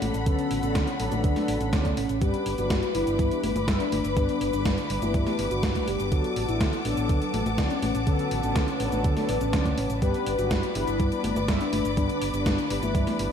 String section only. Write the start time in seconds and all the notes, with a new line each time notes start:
Already playing: A4 F#5 B5
2.22 B4 B5 D6
6.12 B4 F#5 A5
10.02 D5 B5 D6